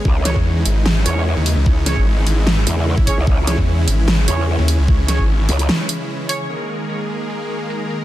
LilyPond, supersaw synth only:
\new Staff \with { instrumentName = "Supersaw synth" } { \time 4/4 \key cis \dorian \tempo 4 = 149 << { <cis e gis e'>1~ | <cis e gis e'>1~ | <cis e gis e'>1~ | <cis e gis e'>1 |
<dis gis ais ais'>1 | } \\ { dis'1~ | dis'1 | cis'1~ | cis'1 |
gis'1 | } >> }